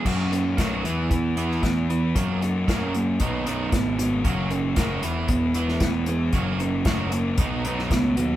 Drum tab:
CC |x---------------|----------------|----------------|----------------|
HH |--x-x-x-x-x-x-x-|x-x-x-x-x-x-x-x-|x-x-x-x-x-x-x-x-|x-x-x-x-x-x-x-x-|
SD |----o------oo---|----o-------o---|----o------oo---|----o------oo---|
BD |o---o---o---o---|o---o---o---o---|o---o---o---o---|o---o---o---o---|